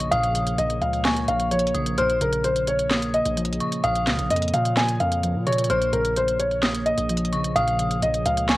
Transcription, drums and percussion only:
0.00 closed hi-hat medium
0.12 closed hi-hat medium
0.23 closed hi-hat medium
0.35 closed hi-hat medium
0.47 closed hi-hat medium
0.58 closed hi-hat medium
0.70 closed hi-hat medium
0.82 closed hi-hat medium
0.93 closed hi-hat medium
1.05 snare loud
1.05 clap medium
1.05 closed hi-hat medium
1.17 closed hi-hat medium
1.28 closed hi-hat medium
1.40 closed hi-hat medium
1.51 closed hi-hat medium
1.59 closed hi-hat medium
1.67 closed hi-hat soft
1.75 closed hi-hat medium
1.86 closed hi-hat medium
1.98 closed hi-hat medium
2.10 closed hi-hat medium
2.21 closed hi-hat medium
2.33 closed hi-hat medium
2.44 closed hi-hat medium
2.56 closed hi-hat medium
2.67 closed hi-hat medium
2.79 closed hi-hat medium
2.91 snare loud
2.91 clap medium
2.91 closed hi-hat medium
3.02 closed hi-hat medium
3.14 closed hi-hat medium
3.26 closed hi-hat medium
3.37 closed hi-hat medium
3.45 closed hi-hat medium
3.53 closed hi-hat soft
3.61 closed hi-hat soft
3.72 closed hi-hat medium
3.84 closed hi-hat medium
3.96 closed hi-hat soft
4.07 snare loud
4.07 clap medium
4.07 closed hi-hat medium
4.19 closed hi-hat medium
4.30 closed hi-hat medium
4.36 closed hi-hat medium
4.42 closed hi-hat medium
4.48 closed hi-hat soft
4.54 closed hi-hat medium
4.65 closed hi-hat medium
4.77 snare loud
4.77 clap medium
4.77 closed hi-hat medium
4.89 closed hi-hat medium
5.00 closed hi-hat medium
5.12 closed hi-hat medium
5.23 closed hi-hat medium
5.47 closed hi-hat medium
5.52 closed hi-hat medium
5.58 closed hi-hat medium
5.64 closed hi-hat medium
5.70 closed hi-hat medium
5.82 closed hi-hat medium
5.93 closed hi-hat medium
6.05 closed hi-hat medium
6.16 closed hi-hat medium
6.28 closed hi-hat soft
6.40 closed hi-hat medium
6.51 closed hi-hat medium
6.63 snare loud
6.63 clap medium
6.63 closed hi-hat medium
6.75 closed hi-hat medium
6.86 closed hi-hat medium
6.98 closed hi-hat medium
7.09 closed hi-hat medium
7.17 closed hi-hat medium
7.25 closed hi-hat soft
7.33 closed hi-hat medium
7.44 closed hi-hat medium
7.56 closed hi-hat medium
7.68 closed hi-hat soft
7.79 closed hi-hat medium
7.91 closed hi-hat medium
8.02 closed hi-hat medium
8.14 closed hi-hat medium
8.26 closed hi-hat medium
8.37 closed hi-hat medium
8.49 snare loud
8.49 clap medium
8.49 closed hi-hat medium

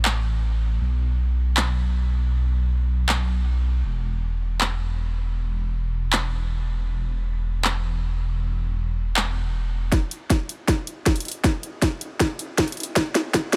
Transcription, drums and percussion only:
0.05 clap medium
1.57 clap medium
3.09 clap medium
4.61 clap medium
6.13 clap medium
7.64 clap medium
9.16 clap medium
9.92 kick medium
9.92 snare soft
9.92 closed hi-hat medium
10.11 closed hi-hat medium
10.30 kick medium
10.30 snare soft
10.30 closed hi-hat medium
10.49 closed hi-hat medium
10.68 kick medium
10.68 snare medium
10.68 closed hi-hat medium
10.87 closed hi-hat medium
11.06 kick medium
11.06 snare medium
11.06 closed hi-hat medium
11.16 closed hi-hat soft
11.20 closed hi-hat medium
11.25 closed hi-hat soft
11.28 closed hi-hat medium
11.32 closed hi-hat medium
11.44 kick loud
11.44 snare medium
11.44 closed hi-hat medium
11.63 closed hi-hat medium
11.82 kick medium
11.82 snare medium
11.82 closed hi-hat medium
12.01 closed hi-hat medium
12.20 kick loud
12.20 snare medium
12.20 closed hi-hat medium
12.39 closed hi-hat medium
12.58 kick medium
12.58 snare medium
12.58 closed hi-hat medium
12.68 closed hi-hat soft
12.72 closed hi-hat medium
12.77 closed hi-hat soft
12.80 closed hi-hat medium
12.83 closed hi-hat medium
12.96 kick medium
12.96 snare medium
12.96 closed hi-hat medium
13.15 snare medium
13.15 closed hi-hat medium
13.34 kick loud
13.34 snare medium
13.34 closed hi-hat medium
13.53 snare medium
13.53 closed hi-hat medium

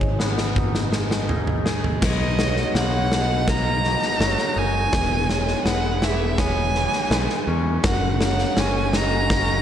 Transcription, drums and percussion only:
0.01 kick soft
0.20 snare soft
0.38 snare soft
0.56 kick medium
0.56 mid tom medium
0.75 snare soft
0.93 snare medium
1.11 snare medium
1.29 floor tom medium
1.47 floor tom medium
1.66 snare medium
1.84 floor tom medium
2.02 kick medium
2.02 snare medium
2.02 crash medium
2.39 snare medium
2.57 snare soft
2.75 snare medium
3.12 snare medium
3.48 kick medium
3.48 snare medium
3.84 snare soft
4.02 snare soft
4.21 snare medium
4.38 snare soft
4.93 kick medium
4.93 snare medium
5.30 snare medium
5.48 snare soft
5.66 snare medium
6.02 snare medium
6.38 kick medium
6.38 snare medium
6.75 snare soft
6.93 snare soft
7.11 snare medium
7.30 snare soft
7.84 kick medium
7.84 snare medium
8.21 snare medium
8.39 snare soft
8.57 snare medium
8.93 snare medium
9.30 kick medium
9.30 snare medium

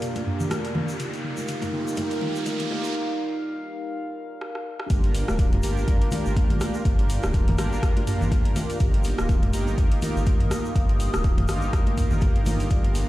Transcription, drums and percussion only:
0.02 closed hi-hat medium
0.02 mid tom medium
0.02 shaker medium
0.15 closed hi-hat soft
0.15 high conga loud
0.15 shaker soft
0.26 mid tom medium
0.40 mid tom medium
0.40 low conga loud
0.40 shaker medium
0.51 cross-stick loud
0.51 closed hi-hat medium
0.51 high conga medium
0.51 shaker medium
0.65 closed hi-hat soft
0.65 shaker soft
0.75 mid tom medium
0.75 high conga loud
0.75 low conga loud
0.89 shaker medium
1.00 closed hi-hat medium
1.00 mid tom medium
1.00 shaker medium
1.14 closed hi-hat soft
1.14 shaker soft
1.24 mid tom medium
1.37 high conga medium
1.37 shaker medium
1.48 closed hi-hat medium
1.48 mid tom medium
1.48 shaker medium
1.62 closed hi-hat soft
1.62 mid tom medium
1.62 high conga loud
1.62 shaker soft
1.73 mid tom medium
1.88 shaker medium
1.97 closed hi-hat medium
1.97 mid tom medium
1.97 high conga loud
1.97 shaker medium
2.11 closed hi-hat soft
2.11 shaker soft
2.21 mid tom medium
2.21 high conga loud
2.21 low conga medium
2.35 shaker medium
2.46 closed hi-hat medium
2.46 mid tom medium
2.46 high conga loud
2.46 shaker medium
2.59 closed hi-hat soft
2.59 low conga medium
2.59 shaker soft
2.70 mid tom medium
2.70 high conga loud
2.84 shaker medium
4.41 cross-stick medium
4.55 cross-stick medium
4.80 cross-stick medium
4.90 kick loud
4.90 closed hi-hat medium
4.90 shaker soft
5.04 closed hi-hat soft
5.15 open hi-hat medium
5.15 shaker medium
5.28 cross-stick medium
5.28 high conga medium
5.28 shaker medium
5.39 kick loud
5.39 closed hi-hat medium
5.39 shaker soft
5.53 closed hi-hat soft
5.53 mid tom medium
5.53 high conga loud
5.63 open hi-hat medium
5.63 shaker medium
5.77 shaker medium
5.88 kick loud
5.88 closed hi-hat medium
5.88 mid tom medium
5.88 high conga loud
5.88 shaker soft
6.02 closed hi-hat soft
6.11 open hi-hat medium
6.11 high conga loud
6.11 low conga loud
6.11 shaker medium
6.26 shaker medium
6.36 kick loud
6.36 closed hi-hat medium
6.36 high conga medium
6.36 shaker soft
6.50 closed hi-hat soft
6.50 low conga medium
6.61 cross-stick medium
6.61 open hi-hat loud
6.61 high conga loud
6.61 shaker loud
6.74 shaker medium
6.85 kick loud
6.85 closed hi-hat medium
6.85 shaker soft
6.99 closed hi-hat soft
7.10 open hi-hat loud
7.10 shaker loud
7.23 cross-stick loud
7.23 high conga medium
7.23 shaker medium
7.33 kick loud
7.33 closed hi-hat medium
7.33 shaker soft
7.48 closed hi-hat soft
7.48 mid tom medium
7.48 high conga loud
7.48 low conga loud
7.58 cross-stick medium
7.58 open hi-hat medium
7.58 shaker medium
7.73 shaker medium
7.83 kick loud
7.83 cross-stick medium
7.83 closed hi-hat medium
7.83 shaker soft
7.97 closed hi-hat soft
7.97 high conga loud
8.07 mid tom medium
8.07 open hi-hat medium
8.07 shaker medium
8.21 low conga loud
8.21 shaker medium
8.31 kick loud
8.31 closed hi-hat medium
8.31 high conga loud
8.31 shaker soft
8.45 closed hi-hat soft
8.56 open hi-hat medium
8.56 high conga loud
8.56 low conga loud
8.56 shaker medium
8.70 open hi-hat medium
8.70 shaker medium
8.80 kick loud
8.80 closed hi-hat medium
8.80 shaker soft
8.94 closed hi-hat soft
9.04 open hi-hat medium
9.04 shaker medium
9.18 cross-stick loud
9.18 high conga medium
9.18 shaker medium
9.29 kick loud
9.29 closed hi-hat medium
9.29 shaker soft
9.43 closed hi-hat soft
9.43 mid tom medium
9.43 high conga loud
9.53 open hi-hat medium
9.53 shaker loud
9.67 shaker medium
9.78 kick loud
9.78 closed hi-hat medium
9.78 mid tom medium
9.78 high conga loud
9.78 shaker soft
9.92 closed hi-hat soft
10.02 open hi-hat medium
10.02 high conga loud
10.02 low conga medium
10.02 shaker medium
10.17 shaker medium
10.26 kick loud
10.26 closed hi-hat medium
10.26 high conga medium
10.26 shaker soft
10.40 closed hi-hat soft
10.40 low conga medium
10.50 cross-stick medium
10.50 open hi-hat medium
10.50 high conga loud
10.50 shaker loud
10.65 shaker medium
10.75 kick loud
10.75 closed hi-hat medium
10.75 shaker soft
10.89 closed hi-hat soft
11.00 open hi-hat medium
11.00 shaker medium
11.14 cross-stick loud
11.14 closed hi-hat soft
11.14 high conga medium
11.14 shaker medium
11.24 kick loud
11.24 closed hi-hat medium
11.24 shaker soft
11.38 closed hi-hat soft
11.38 mid tom medium
11.38 high conga loud
11.38 low conga loud
11.48 cross-stick medium
11.48 open hi-hat medium
11.48 shaker medium
11.61 shaker medium
11.73 kick loud
11.73 cross-stick medium
11.73 closed hi-hat medium
11.73 shaker soft
11.87 closed hi-hat soft
11.87 high conga loud
11.97 kick medium
11.97 mid tom medium
11.97 open hi-hat medium
11.97 shaker loud
12.11 low conga loud
12.11 shaker medium
12.21 kick loud
12.21 closed hi-hat medium
12.21 high conga medium
12.21 shaker soft
12.36 closed hi-hat soft
12.46 open hi-hat medium
12.46 high conga loud
12.46 low conga medium
12.46 shaker loud
12.60 open hi-hat medium
12.60 shaker medium
12.70 kick loud
12.70 closed hi-hat medium
12.70 shaker soft
12.84 closed hi-hat soft
12.95 open hi-hat medium
12.95 shaker loud

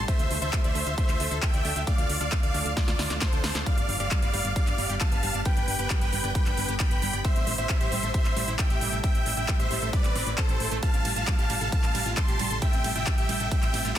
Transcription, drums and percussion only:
0.08 kick loud
0.08 closed hi-hat medium
0.19 closed hi-hat medium
0.31 open hi-hat loud
0.42 closed hi-hat medium
0.53 kick loud
0.53 clap loud
0.53 closed hi-hat medium
0.64 closed hi-hat medium
0.75 open hi-hat loud
0.87 closed hi-hat medium
0.98 kick loud
0.98 closed hi-hat medium
1.09 clap soft
1.09 closed hi-hat medium
1.20 open hi-hat loud
1.31 closed hi-hat medium
1.43 kick loud
1.43 clap loud
1.43 closed hi-hat medium
1.54 closed hi-hat medium
1.65 open hi-hat loud
1.76 closed hi-hat medium
1.87 kick loud
1.87 closed hi-hat medium
1.98 closed hi-hat medium
2.09 open hi-hat loud
2.21 closed hi-hat medium
2.32 kick loud
2.32 clap loud
2.32 closed hi-hat medium
2.43 closed hi-hat medium
2.54 open hi-hat loud
2.66 closed hi-hat medium
2.77 kick loud
2.77 snare medium
2.77 closed hi-hat medium
2.88 snare medium
2.88 closed hi-hat medium
2.99 snare medium
2.99 open hi-hat loud
3.10 snare medium
3.10 closed hi-hat medium
3.21 kick loud
3.21 snare medium
3.21 clap loud
3.21 closed hi-hat medium
3.33 closed hi-hat medium
3.44 snare loud
3.44 open hi-hat loud
3.55 snare medium
3.55 closed hi-hat medium
3.66 kick loud
3.66 closed hi-hat medium
3.78 closed hi-hat medium
3.89 open hi-hat loud
4.00 closed hi-hat medium
4.11 kick loud
4.11 clap loud
4.11 closed hi-hat medium
4.22 closed hi-hat medium
4.34 open hi-hat loud
4.45 closed hi-hat medium
4.56 kick loud
4.56 closed hi-hat medium
4.67 clap soft
4.67 closed hi-hat medium
4.78 open hi-hat loud
4.89 closed hi-hat medium
5.01 kick loud
5.01 clap loud
5.01 closed hi-hat medium
5.12 closed hi-hat medium
5.23 open hi-hat loud
5.34 closed hi-hat medium
5.45 kick loud
5.45 closed hi-hat medium
5.57 closed hi-hat medium
5.68 open hi-hat loud
5.79 closed hi-hat medium
5.90 kick loud
5.90 clap loud
5.90 closed hi-hat medium
6.01 closed hi-hat medium
6.13 open hi-hat loud
6.24 closed hi-hat medium
6.35 kick loud
6.35 closed hi-hat medium
6.46 clap soft
6.46 closed hi-hat medium
6.57 open hi-hat loud
6.69 closed hi-hat medium
6.80 kick loud
6.80 clap loud
6.80 closed hi-hat medium
6.91 closed hi-hat medium
7.02 open hi-hat loud
7.13 closed hi-hat medium
7.25 kick loud
7.25 closed hi-hat medium
7.36 closed hi-hat medium
7.47 open hi-hat loud
7.58 closed hi-hat medium
7.69 kick loud
7.69 clap loud
7.69 closed hi-hat medium
7.81 closed hi-hat medium
7.92 open hi-hat loud
8.03 closed hi-hat medium
8.14 kick loud
8.14 closed hi-hat medium
8.25 clap soft
8.25 closed hi-hat medium
8.37 open hi-hat loud
8.48 closed hi-hat medium
8.59 kick loud
8.59 clap loud
8.59 closed hi-hat medium
8.70 closed hi-hat medium
8.81 open hi-hat loud
8.93 closed hi-hat medium
9.04 kick loud
9.04 closed hi-hat medium
9.15 closed hi-hat medium
9.26 open hi-hat loud
9.37 closed hi-hat medium
9.48 kick loud
9.48 clap loud
9.48 closed hi-hat medium
9.60 closed hi-hat medium
9.71 open hi-hat loud
9.82 closed hi-hat medium
9.93 kick loud
9.93 closed hi-hat medium
10.04 clap soft
10.04 closed hi-hat medium
10.15 open hi-hat loud
10.27 closed hi-hat medium
10.38 kick loud
10.38 clap loud
10.38 closed hi-hat medium
10.49 closed hi-hat medium
10.60 open hi-hat loud
10.71 closed hi-hat medium
10.83 kick loud
10.83 closed hi-hat medium
10.83 ride medium
10.94 closed hi-hat medium
11.05 open hi-hat loud
11.05 ride medium
11.16 closed hi-hat medium
11.27 kick loud
11.27 clap loud
11.27 closed hi-hat medium
11.27 ride medium
11.39 closed hi-hat medium
11.50 open hi-hat loud
11.50 ride medium
11.61 closed hi-hat medium
11.72 kick loud
11.72 closed hi-hat medium
11.72 ride medium
11.84 clap soft
11.84 closed hi-hat medium
11.95 open hi-hat loud
11.95 ride medium
12.06 closed hi-hat medium
12.17 kick loud
12.17 clap loud
12.17 closed hi-hat medium
12.17 ride medium
12.28 closed hi-hat medium
12.39 open hi-hat loud
12.39 ride medium
12.51 closed hi-hat medium
12.62 kick loud
12.62 closed hi-hat medium
12.62 ride medium
12.73 closed hi-hat medium
12.84 open hi-hat loud
12.84 ride medium
12.96 closed hi-hat medium
13.07 kick loud
13.07 clap loud
13.07 closed hi-hat medium
13.07 ride medium
13.18 closed hi-hat medium
13.29 open hi-hat loud
13.29 ride medium
13.40 closed hi-hat medium
13.51 kick loud
13.51 closed hi-hat medium
13.51 ride medium
13.63 clap soft
13.63 closed hi-hat medium
13.74 open hi-hat loud
13.74 ride medium
13.85 closed hi-hat medium

